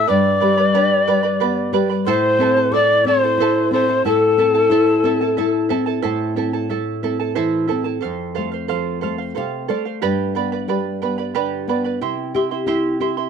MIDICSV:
0, 0, Header, 1, 5, 480
1, 0, Start_track
1, 0, Key_signature, 0, "minor"
1, 0, Tempo, 662983
1, 56, Time_signature, 6, 3, 24, 8
1, 9626, End_track
2, 0, Start_track
2, 0, Title_t, "Quena"
2, 0, Program_c, 0, 77
2, 61, Note_on_c, 0, 86, 88
2, 1256, Note_off_c, 0, 86, 0
2, 1487, Note_on_c, 0, 84, 90
2, 1971, Note_on_c, 0, 86, 90
2, 1981, Note_off_c, 0, 84, 0
2, 2203, Note_on_c, 0, 84, 81
2, 2214, Note_off_c, 0, 86, 0
2, 2687, Note_off_c, 0, 84, 0
2, 2693, Note_on_c, 0, 84, 80
2, 2915, Note_off_c, 0, 84, 0
2, 2931, Note_on_c, 0, 81, 81
2, 4101, Note_off_c, 0, 81, 0
2, 9626, End_track
3, 0, Start_track
3, 0, Title_t, "Charango"
3, 0, Program_c, 1, 24
3, 54, Note_on_c, 1, 79, 65
3, 57, Note_on_c, 1, 71, 66
3, 63, Note_on_c, 1, 74, 71
3, 63, Note_on_c, 1, 83, 66
3, 283, Note_off_c, 1, 79, 0
3, 288, Note_off_c, 1, 71, 0
3, 292, Note_off_c, 1, 74, 0
3, 292, Note_on_c, 1, 79, 62
3, 295, Note_off_c, 1, 83, 0
3, 297, Note_on_c, 1, 71, 62
3, 301, Note_on_c, 1, 74, 66
3, 304, Note_on_c, 1, 83, 66
3, 407, Note_off_c, 1, 83, 0
3, 413, Note_off_c, 1, 74, 0
3, 413, Note_off_c, 1, 79, 0
3, 416, Note_off_c, 1, 71, 0
3, 416, Note_on_c, 1, 83, 57
3, 422, Note_on_c, 1, 74, 47
3, 429, Note_on_c, 1, 71, 49
3, 532, Note_off_c, 1, 71, 0
3, 534, Note_off_c, 1, 74, 0
3, 535, Note_off_c, 1, 83, 0
3, 537, Note_on_c, 1, 67, 74
3, 541, Note_on_c, 1, 71, 72
3, 541, Note_on_c, 1, 79, 81
3, 543, Note_on_c, 1, 74, 81
3, 544, Note_on_c, 1, 83, 81
3, 769, Note_off_c, 1, 79, 0
3, 770, Note_off_c, 1, 71, 0
3, 775, Note_off_c, 1, 67, 0
3, 776, Note_off_c, 1, 74, 0
3, 778, Note_on_c, 1, 79, 70
3, 779, Note_off_c, 1, 83, 0
3, 779, Note_on_c, 1, 71, 74
3, 785, Note_on_c, 1, 74, 78
3, 790, Note_on_c, 1, 83, 77
3, 881, Note_off_c, 1, 83, 0
3, 889, Note_off_c, 1, 74, 0
3, 890, Note_on_c, 1, 83, 55
3, 894, Note_off_c, 1, 71, 0
3, 896, Note_off_c, 1, 79, 0
3, 898, Note_on_c, 1, 74, 51
3, 902, Note_on_c, 1, 71, 52
3, 1010, Note_off_c, 1, 71, 0
3, 1012, Note_off_c, 1, 83, 0
3, 1013, Note_off_c, 1, 74, 0
3, 1015, Note_on_c, 1, 79, 66
3, 1018, Note_on_c, 1, 71, 77
3, 1022, Note_on_c, 1, 74, 82
3, 1026, Note_on_c, 1, 83, 81
3, 1244, Note_off_c, 1, 79, 0
3, 1247, Note_off_c, 1, 71, 0
3, 1251, Note_off_c, 1, 74, 0
3, 1253, Note_on_c, 1, 79, 66
3, 1255, Note_off_c, 1, 83, 0
3, 1256, Note_on_c, 1, 71, 75
3, 1259, Note_on_c, 1, 74, 77
3, 1263, Note_on_c, 1, 83, 73
3, 1363, Note_off_c, 1, 83, 0
3, 1370, Note_off_c, 1, 74, 0
3, 1372, Note_on_c, 1, 83, 51
3, 1373, Note_off_c, 1, 79, 0
3, 1374, Note_off_c, 1, 71, 0
3, 1378, Note_on_c, 1, 74, 45
3, 1384, Note_on_c, 1, 71, 41
3, 1492, Note_off_c, 1, 83, 0
3, 1495, Note_off_c, 1, 74, 0
3, 1496, Note_on_c, 1, 72, 87
3, 1498, Note_off_c, 1, 71, 0
3, 1502, Note_on_c, 1, 69, 87
3, 1502, Note_on_c, 1, 76, 92
3, 1503, Note_on_c, 1, 64, 80
3, 1506, Note_on_c, 1, 81, 93
3, 1729, Note_off_c, 1, 76, 0
3, 1730, Note_off_c, 1, 64, 0
3, 1734, Note_off_c, 1, 69, 0
3, 1734, Note_off_c, 1, 72, 0
3, 1737, Note_on_c, 1, 76, 63
3, 1738, Note_on_c, 1, 64, 63
3, 1739, Note_off_c, 1, 81, 0
3, 1743, Note_on_c, 1, 69, 73
3, 1746, Note_on_c, 1, 81, 71
3, 1848, Note_off_c, 1, 81, 0
3, 1853, Note_off_c, 1, 69, 0
3, 1855, Note_off_c, 1, 64, 0
3, 1855, Note_off_c, 1, 76, 0
3, 1857, Note_on_c, 1, 81, 55
3, 1862, Note_on_c, 1, 69, 52
3, 1866, Note_on_c, 1, 64, 41
3, 1973, Note_off_c, 1, 64, 0
3, 1974, Note_off_c, 1, 69, 0
3, 1974, Note_off_c, 1, 81, 0
3, 1979, Note_on_c, 1, 76, 63
3, 1981, Note_on_c, 1, 64, 61
3, 1983, Note_on_c, 1, 69, 62
3, 1986, Note_on_c, 1, 81, 68
3, 2209, Note_off_c, 1, 76, 0
3, 2216, Note_off_c, 1, 64, 0
3, 2217, Note_off_c, 1, 69, 0
3, 2218, Note_on_c, 1, 76, 58
3, 2219, Note_off_c, 1, 81, 0
3, 2224, Note_on_c, 1, 64, 60
3, 2228, Note_on_c, 1, 69, 61
3, 2231, Note_on_c, 1, 81, 68
3, 2334, Note_off_c, 1, 76, 0
3, 2334, Note_off_c, 1, 81, 0
3, 2337, Note_off_c, 1, 64, 0
3, 2340, Note_off_c, 1, 69, 0
3, 2342, Note_on_c, 1, 81, 49
3, 2348, Note_on_c, 1, 69, 46
3, 2354, Note_on_c, 1, 64, 45
3, 2457, Note_off_c, 1, 81, 0
3, 2459, Note_off_c, 1, 69, 0
3, 2461, Note_off_c, 1, 64, 0
3, 2464, Note_on_c, 1, 72, 76
3, 2465, Note_on_c, 1, 76, 77
3, 2469, Note_on_c, 1, 64, 82
3, 2470, Note_on_c, 1, 69, 83
3, 2474, Note_on_c, 1, 81, 90
3, 2695, Note_off_c, 1, 64, 0
3, 2695, Note_off_c, 1, 76, 0
3, 2697, Note_off_c, 1, 72, 0
3, 2700, Note_off_c, 1, 69, 0
3, 2702, Note_off_c, 1, 81, 0
3, 2704, Note_on_c, 1, 64, 66
3, 2704, Note_on_c, 1, 76, 56
3, 2708, Note_on_c, 1, 69, 67
3, 2710, Note_on_c, 1, 81, 61
3, 2806, Note_off_c, 1, 81, 0
3, 2810, Note_off_c, 1, 69, 0
3, 2814, Note_on_c, 1, 81, 55
3, 2815, Note_off_c, 1, 64, 0
3, 2817, Note_off_c, 1, 76, 0
3, 2819, Note_on_c, 1, 69, 50
3, 2823, Note_on_c, 1, 64, 46
3, 2928, Note_off_c, 1, 64, 0
3, 2932, Note_off_c, 1, 69, 0
3, 2932, Note_off_c, 1, 81, 0
3, 2936, Note_on_c, 1, 76, 70
3, 2937, Note_on_c, 1, 64, 63
3, 2941, Note_on_c, 1, 69, 71
3, 2945, Note_on_c, 1, 81, 75
3, 3167, Note_off_c, 1, 76, 0
3, 3168, Note_off_c, 1, 64, 0
3, 3172, Note_off_c, 1, 69, 0
3, 3175, Note_on_c, 1, 76, 60
3, 3177, Note_on_c, 1, 64, 64
3, 3178, Note_off_c, 1, 81, 0
3, 3181, Note_on_c, 1, 69, 60
3, 3186, Note_on_c, 1, 81, 74
3, 3280, Note_off_c, 1, 81, 0
3, 3284, Note_off_c, 1, 69, 0
3, 3287, Note_off_c, 1, 64, 0
3, 3289, Note_on_c, 1, 81, 51
3, 3293, Note_off_c, 1, 76, 0
3, 3293, Note_on_c, 1, 69, 52
3, 3296, Note_on_c, 1, 64, 48
3, 3405, Note_off_c, 1, 64, 0
3, 3407, Note_off_c, 1, 69, 0
3, 3409, Note_off_c, 1, 81, 0
3, 3409, Note_on_c, 1, 72, 73
3, 3412, Note_on_c, 1, 76, 79
3, 3414, Note_on_c, 1, 64, 80
3, 3416, Note_on_c, 1, 69, 84
3, 3418, Note_on_c, 1, 81, 80
3, 3639, Note_off_c, 1, 76, 0
3, 3648, Note_off_c, 1, 64, 0
3, 3648, Note_off_c, 1, 69, 0
3, 3648, Note_on_c, 1, 76, 73
3, 3650, Note_off_c, 1, 72, 0
3, 3654, Note_off_c, 1, 81, 0
3, 3657, Note_on_c, 1, 64, 76
3, 3657, Note_on_c, 1, 69, 70
3, 3662, Note_on_c, 1, 81, 65
3, 3762, Note_off_c, 1, 81, 0
3, 3768, Note_off_c, 1, 69, 0
3, 3769, Note_off_c, 1, 76, 0
3, 3771, Note_on_c, 1, 81, 53
3, 3773, Note_off_c, 1, 64, 0
3, 3777, Note_on_c, 1, 69, 53
3, 3783, Note_on_c, 1, 64, 48
3, 3885, Note_off_c, 1, 64, 0
3, 3887, Note_off_c, 1, 69, 0
3, 3888, Note_on_c, 1, 76, 67
3, 3890, Note_off_c, 1, 81, 0
3, 3894, Note_on_c, 1, 64, 74
3, 3896, Note_on_c, 1, 69, 76
3, 3899, Note_on_c, 1, 81, 72
3, 4112, Note_off_c, 1, 76, 0
3, 4119, Note_off_c, 1, 64, 0
3, 4119, Note_off_c, 1, 69, 0
3, 4121, Note_off_c, 1, 81, 0
3, 4121, Note_on_c, 1, 76, 60
3, 4127, Note_on_c, 1, 64, 66
3, 4128, Note_on_c, 1, 69, 68
3, 4129, Note_on_c, 1, 81, 68
3, 4235, Note_off_c, 1, 81, 0
3, 4242, Note_off_c, 1, 69, 0
3, 4243, Note_on_c, 1, 81, 57
3, 4245, Note_off_c, 1, 64, 0
3, 4246, Note_off_c, 1, 76, 0
3, 4250, Note_on_c, 1, 69, 56
3, 4253, Note_on_c, 1, 64, 46
3, 4354, Note_off_c, 1, 64, 0
3, 4359, Note_off_c, 1, 69, 0
3, 4359, Note_off_c, 1, 81, 0
3, 4361, Note_on_c, 1, 72, 76
3, 4362, Note_on_c, 1, 64, 78
3, 4363, Note_on_c, 1, 76, 80
3, 4367, Note_on_c, 1, 81, 82
3, 4368, Note_on_c, 1, 69, 84
3, 4598, Note_off_c, 1, 76, 0
3, 4601, Note_off_c, 1, 64, 0
3, 4603, Note_off_c, 1, 69, 0
3, 4606, Note_off_c, 1, 72, 0
3, 4607, Note_on_c, 1, 76, 60
3, 4609, Note_off_c, 1, 81, 0
3, 4609, Note_on_c, 1, 64, 64
3, 4612, Note_on_c, 1, 69, 59
3, 4619, Note_on_c, 1, 81, 65
3, 4721, Note_off_c, 1, 81, 0
3, 4724, Note_off_c, 1, 69, 0
3, 4728, Note_off_c, 1, 64, 0
3, 4729, Note_off_c, 1, 76, 0
3, 4730, Note_on_c, 1, 81, 51
3, 4732, Note_on_c, 1, 69, 50
3, 4737, Note_on_c, 1, 64, 39
3, 4844, Note_off_c, 1, 64, 0
3, 4847, Note_off_c, 1, 69, 0
3, 4848, Note_on_c, 1, 76, 59
3, 4850, Note_off_c, 1, 81, 0
3, 4853, Note_on_c, 1, 64, 57
3, 4856, Note_on_c, 1, 69, 58
3, 4858, Note_on_c, 1, 81, 62
3, 5081, Note_off_c, 1, 76, 0
3, 5084, Note_off_c, 1, 64, 0
3, 5087, Note_off_c, 1, 69, 0
3, 5089, Note_off_c, 1, 81, 0
3, 5089, Note_on_c, 1, 76, 57
3, 5093, Note_on_c, 1, 64, 57
3, 5096, Note_on_c, 1, 69, 57
3, 5098, Note_on_c, 1, 81, 62
3, 5201, Note_off_c, 1, 81, 0
3, 5206, Note_off_c, 1, 69, 0
3, 5210, Note_off_c, 1, 76, 0
3, 5210, Note_on_c, 1, 81, 54
3, 5212, Note_off_c, 1, 64, 0
3, 5215, Note_on_c, 1, 69, 47
3, 5221, Note_on_c, 1, 64, 39
3, 5318, Note_off_c, 1, 64, 0
3, 5320, Note_off_c, 1, 69, 0
3, 5320, Note_off_c, 1, 81, 0
3, 5324, Note_on_c, 1, 72, 72
3, 5326, Note_on_c, 1, 76, 79
3, 5327, Note_on_c, 1, 64, 79
3, 5329, Note_on_c, 1, 69, 78
3, 5329, Note_on_c, 1, 81, 80
3, 5548, Note_off_c, 1, 76, 0
3, 5554, Note_off_c, 1, 64, 0
3, 5556, Note_off_c, 1, 69, 0
3, 5557, Note_on_c, 1, 76, 55
3, 5559, Note_off_c, 1, 81, 0
3, 5563, Note_on_c, 1, 64, 58
3, 5565, Note_on_c, 1, 69, 62
3, 5568, Note_off_c, 1, 72, 0
3, 5568, Note_on_c, 1, 81, 62
3, 5669, Note_off_c, 1, 81, 0
3, 5678, Note_off_c, 1, 69, 0
3, 5678, Note_on_c, 1, 81, 48
3, 5680, Note_off_c, 1, 64, 0
3, 5684, Note_off_c, 1, 76, 0
3, 5687, Note_on_c, 1, 69, 43
3, 5688, Note_on_c, 1, 64, 39
3, 5788, Note_off_c, 1, 69, 0
3, 5794, Note_off_c, 1, 64, 0
3, 5797, Note_on_c, 1, 69, 62
3, 5805, Note_off_c, 1, 81, 0
3, 5806, Note_on_c, 1, 72, 65
3, 5810, Note_on_c, 1, 77, 67
3, 6035, Note_off_c, 1, 69, 0
3, 6038, Note_off_c, 1, 72, 0
3, 6043, Note_off_c, 1, 77, 0
3, 6043, Note_on_c, 1, 69, 61
3, 6047, Note_on_c, 1, 72, 61
3, 6051, Note_on_c, 1, 77, 65
3, 6158, Note_off_c, 1, 77, 0
3, 6164, Note_off_c, 1, 72, 0
3, 6167, Note_on_c, 1, 77, 50
3, 6168, Note_off_c, 1, 69, 0
3, 6180, Note_on_c, 1, 72, 42
3, 6283, Note_off_c, 1, 72, 0
3, 6285, Note_off_c, 1, 77, 0
3, 6285, Note_on_c, 1, 69, 71
3, 6292, Note_on_c, 1, 72, 80
3, 6294, Note_on_c, 1, 77, 82
3, 6515, Note_off_c, 1, 69, 0
3, 6522, Note_off_c, 1, 72, 0
3, 6524, Note_on_c, 1, 69, 57
3, 6529, Note_off_c, 1, 77, 0
3, 6531, Note_on_c, 1, 72, 60
3, 6538, Note_on_c, 1, 77, 64
3, 6640, Note_off_c, 1, 77, 0
3, 6645, Note_off_c, 1, 72, 0
3, 6648, Note_off_c, 1, 69, 0
3, 6648, Note_on_c, 1, 77, 51
3, 6655, Note_on_c, 1, 72, 36
3, 6764, Note_off_c, 1, 72, 0
3, 6767, Note_on_c, 1, 69, 57
3, 6770, Note_off_c, 1, 77, 0
3, 6773, Note_on_c, 1, 72, 64
3, 6781, Note_on_c, 1, 77, 63
3, 7003, Note_off_c, 1, 69, 0
3, 7005, Note_off_c, 1, 72, 0
3, 7011, Note_on_c, 1, 69, 62
3, 7013, Note_off_c, 1, 77, 0
3, 7014, Note_on_c, 1, 72, 63
3, 7022, Note_on_c, 1, 77, 62
3, 7126, Note_off_c, 1, 77, 0
3, 7132, Note_off_c, 1, 72, 0
3, 7133, Note_off_c, 1, 69, 0
3, 7134, Note_on_c, 1, 77, 47
3, 7143, Note_on_c, 1, 72, 42
3, 7249, Note_off_c, 1, 72, 0
3, 7252, Note_off_c, 1, 77, 0
3, 7252, Note_on_c, 1, 67, 82
3, 7255, Note_on_c, 1, 79, 85
3, 7257, Note_on_c, 1, 71, 90
3, 7258, Note_on_c, 1, 74, 90
3, 7261, Note_on_c, 1, 83, 94
3, 7485, Note_off_c, 1, 79, 0
3, 7491, Note_off_c, 1, 71, 0
3, 7493, Note_off_c, 1, 67, 0
3, 7494, Note_off_c, 1, 74, 0
3, 7494, Note_on_c, 1, 79, 61
3, 7495, Note_off_c, 1, 83, 0
3, 7500, Note_on_c, 1, 71, 58
3, 7503, Note_on_c, 1, 74, 69
3, 7504, Note_on_c, 1, 83, 65
3, 7609, Note_off_c, 1, 83, 0
3, 7614, Note_off_c, 1, 74, 0
3, 7614, Note_off_c, 1, 79, 0
3, 7617, Note_off_c, 1, 71, 0
3, 7618, Note_on_c, 1, 83, 54
3, 7622, Note_on_c, 1, 74, 48
3, 7625, Note_on_c, 1, 71, 46
3, 7731, Note_off_c, 1, 71, 0
3, 7734, Note_off_c, 1, 74, 0
3, 7735, Note_on_c, 1, 79, 57
3, 7736, Note_off_c, 1, 83, 0
3, 7740, Note_on_c, 1, 71, 58
3, 7743, Note_on_c, 1, 74, 58
3, 7743, Note_on_c, 1, 83, 63
3, 7969, Note_off_c, 1, 79, 0
3, 7973, Note_off_c, 1, 71, 0
3, 7974, Note_off_c, 1, 74, 0
3, 7977, Note_on_c, 1, 79, 58
3, 7979, Note_off_c, 1, 83, 0
3, 7982, Note_on_c, 1, 71, 63
3, 7983, Note_on_c, 1, 74, 63
3, 7987, Note_on_c, 1, 83, 66
3, 8085, Note_off_c, 1, 83, 0
3, 8093, Note_off_c, 1, 74, 0
3, 8094, Note_on_c, 1, 83, 52
3, 8096, Note_off_c, 1, 79, 0
3, 8097, Note_off_c, 1, 71, 0
3, 8101, Note_on_c, 1, 74, 45
3, 8106, Note_on_c, 1, 71, 47
3, 8212, Note_off_c, 1, 71, 0
3, 8212, Note_off_c, 1, 74, 0
3, 8213, Note_off_c, 1, 83, 0
3, 8215, Note_on_c, 1, 67, 72
3, 8218, Note_on_c, 1, 79, 76
3, 8221, Note_on_c, 1, 71, 80
3, 8221, Note_on_c, 1, 74, 80
3, 8222, Note_on_c, 1, 83, 79
3, 8452, Note_off_c, 1, 79, 0
3, 8455, Note_off_c, 1, 67, 0
3, 8455, Note_off_c, 1, 71, 0
3, 8458, Note_off_c, 1, 74, 0
3, 8458, Note_off_c, 1, 83, 0
3, 8461, Note_on_c, 1, 79, 55
3, 8464, Note_on_c, 1, 71, 57
3, 8465, Note_on_c, 1, 74, 61
3, 8467, Note_on_c, 1, 83, 61
3, 8566, Note_off_c, 1, 83, 0
3, 8571, Note_off_c, 1, 74, 0
3, 8575, Note_on_c, 1, 83, 48
3, 8577, Note_off_c, 1, 71, 0
3, 8578, Note_off_c, 1, 79, 0
3, 8580, Note_on_c, 1, 74, 44
3, 8585, Note_on_c, 1, 71, 45
3, 8695, Note_off_c, 1, 83, 0
3, 8698, Note_off_c, 1, 71, 0
3, 8698, Note_off_c, 1, 74, 0
3, 8699, Note_on_c, 1, 79, 63
3, 8701, Note_on_c, 1, 64, 63
3, 8706, Note_on_c, 1, 76, 61
3, 8706, Note_on_c, 1, 84, 68
3, 8929, Note_off_c, 1, 79, 0
3, 8935, Note_off_c, 1, 64, 0
3, 8938, Note_off_c, 1, 76, 0
3, 8938, Note_on_c, 1, 79, 57
3, 8941, Note_off_c, 1, 84, 0
3, 8943, Note_on_c, 1, 64, 62
3, 8946, Note_on_c, 1, 76, 66
3, 8949, Note_on_c, 1, 84, 69
3, 9049, Note_off_c, 1, 84, 0
3, 9054, Note_off_c, 1, 76, 0
3, 9057, Note_off_c, 1, 79, 0
3, 9058, Note_on_c, 1, 84, 49
3, 9059, Note_off_c, 1, 64, 0
3, 9062, Note_on_c, 1, 76, 47
3, 9067, Note_on_c, 1, 64, 45
3, 9170, Note_off_c, 1, 76, 0
3, 9171, Note_off_c, 1, 84, 0
3, 9172, Note_off_c, 1, 64, 0
3, 9173, Note_on_c, 1, 67, 73
3, 9176, Note_on_c, 1, 79, 77
3, 9179, Note_on_c, 1, 76, 72
3, 9180, Note_on_c, 1, 84, 79
3, 9181, Note_on_c, 1, 64, 84
3, 9408, Note_off_c, 1, 79, 0
3, 9409, Note_off_c, 1, 64, 0
3, 9411, Note_off_c, 1, 76, 0
3, 9414, Note_off_c, 1, 67, 0
3, 9414, Note_off_c, 1, 84, 0
3, 9416, Note_on_c, 1, 79, 53
3, 9418, Note_on_c, 1, 64, 60
3, 9420, Note_on_c, 1, 76, 59
3, 9423, Note_on_c, 1, 84, 61
3, 9527, Note_off_c, 1, 84, 0
3, 9534, Note_off_c, 1, 76, 0
3, 9536, Note_off_c, 1, 79, 0
3, 9536, Note_on_c, 1, 84, 52
3, 9537, Note_off_c, 1, 64, 0
3, 9542, Note_on_c, 1, 76, 44
3, 9548, Note_on_c, 1, 64, 41
3, 9626, Note_off_c, 1, 64, 0
3, 9626, Note_off_c, 1, 76, 0
3, 9626, Note_off_c, 1, 84, 0
3, 9626, End_track
4, 0, Start_track
4, 0, Title_t, "Pan flute"
4, 0, Program_c, 2, 75
4, 0, Note_on_c, 2, 76, 92
4, 63, Note_on_c, 2, 74, 95
4, 74, Note_off_c, 2, 76, 0
4, 1257, Note_off_c, 2, 74, 0
4, 1504, Note_on_c, 2, 72, 108
4, 1984, Note_on_c, 2, 74, 103
4, 1994, Note_off_c, 2, 72, 0
4, 2218, Note_on_c, 2, 72, 100
4, 2229, Note_off_c, 2, 74, 0
4, 2694, Note_off_c, 2, 72, 0
4, 2701, Note_on_c, 2, 72, 95
4, 2919, Note_off_c, 2, 72, 0
4, 2944, Note_on_c, 2, 69, 92
4, 4108, Note_off_c, 2, 69, 0
4, 9626, End_track
5, 0, Start_track
5, 0, Title_t, "Nylon-string guitar"
5, 0, Program_c, 3, 24
5, 70, Note_on_c, 3, 43, 67
5, 307, Note_on_c, 3, 55, 60
5, 533, Note_off_c, 3, 55, 0
5, 550, Note_on_c, 3, 62, 56
5, 775, Note_off_c, 3, 62, 0
5, 784, Note_on_c, 3, 55, 57
5, 1012, Note_off_c, 3, 55, 0
5, 1025, Note_on_c, 3, 59, 58
5, 1250, Note_on_c, 3, 55, 54
5, 1252, Note_off_c, 3, 59, 0
5, 1471, Note_off_c, 3, 43, 0
5, 1484, Note_off_c, 3, 55, 0
5, 1494, Note_on_c, 3, 45, 69
5, 1727, Note_on_c, 3, 60, 58
5, 1962, Note_off_c, 3, 60, 0
5, 1966, Note_on_c, 3, 69, 58
5, 2201, Note_off_c, 3, 69, 0
5, 2205, Note_on_c, 3, 60, 57
5, 2441, Note_off_c, 3, 60, 0
5, 2444, Note_on_c, 3, 64, 56
5, 2680, Note_off_c, 3, 64, 0
5, 2685, Note_on_c, 3, 60, 56
5, 2902, Note_off_c, 3, 45, 0
5, 2920, Note_off_c, 3, 60, 0
5, 2930, Note_on_c, 3, 45, 64
5, 3170, Note_on_c, 3, 60, 57
5, 3400, Note_on_c, 3, 64, 58
5, 3403, Note_off_c, 3, 60, 0
5, 3638, Note_off_c, 3, 64, 0
5, 3645, Note_on_c, 3, 60, 58
5, 3880, Note_off_c, 3, 60, 0
5, 3896, Note_on_c, 3, 64, 56
5, 4126, Note_off_c, 3, 64, 0
5, 4129, Note_on_c, 3, 60, 55
5, 4341, Note_off_c, 3, 45, 0
5, 4362, Note_off_c, 3, 60, 0
5, 4373, Note_on_c, 3, 45, 58
5, 4613, Note_on_c, 3, 60, 48
5, 4844, Note_off_c, 3, 60, 0
5, 4851, Note_on_c, 3, 57, 48
5, 5084, Note_off_c, 3, 57, 0
5, 5091, Note_on_c, 3, 60, 46
5, 5324, Note_off_c, 3, 60, 0
5, 5339, Note_on_c, 3, 52, 45
5, 5568, Note_off_c, 3, 52, 0
5, 5583, Note_on_c, 3, 60, 50
5, 5784, Note_off_c, 3, 45, 0
5, 5810, Note_off_c, 3, 60, 0
5, 5822, Note_on_c, 3, 41, 57
5, 6065, Note_on_c, 3, 57, 48
5, 6292, Note_off_c, 3, 57, 0
5, 6306, Note_on_c, 3, 53, 49
5, 6533, Note_off_c, 3, 53, 0
5, 6542, Note_on_c, 3, 57, 51
5, 6771, Note_off_c, 3, 57, 0
5, 6784, Note_off_c, 3, 41, 0
5, 6786, Note_on_c, 3, 48, 49
5, 6789, Note_on_c, 3, 77, 62
5, 7004, Note_off_c, 3, 77, 0
5, 7013, Note_off_c, 3, 48, 0
5, 7019, Note_on_c, 3, 57, 50
5, 7023, Note_on_c, 3, 74, 58
5, 7242, Note_off_c, 3, 74, 0
5, 7250, Note_off_c, 3, 57, 0
5, 7258, Note_on_c, 3, 43, 59
5, 7496, Note_on_c, 3, 59, 46
5, 7728, Note_off_c, 3, 59, 0
5, 7732, Note_on_c, 3, 55, 46
5, 7966, Note_off_c, 3, 55, 0
5, 7982, Note_on_c, 3, 59, 47
5, 8211, Note_off_c, 3, 59, 0
5, 8221, Note_on_c, 3, 50, 44
5, 8451, Note_off_c, 3, 50, 0
5, 8454, Note_on_c, 3, 59, 50
5, 8668, Note_off_c, 3, 43, 0
5, 8687, Note_off_c, 3, 59, 0
5, 8698, Note_on_c, 3, 48, 59
5, 8940, Note_on_c, 3, 67, 49
5, 9166, Note_off_c, 3, 67, 0
5, 9169, Note_on_c, 3, 64, 50
5, 9405, Note_off_c, 3, 64, 0
5, 9414, Note_on_c, 3, 67, 47
5, 9626, Note_off_c, 3, 48, 0
5, 9626, Note_off_c, 3, 67, 0
5, 9626, End_track
0, 0, End_of_file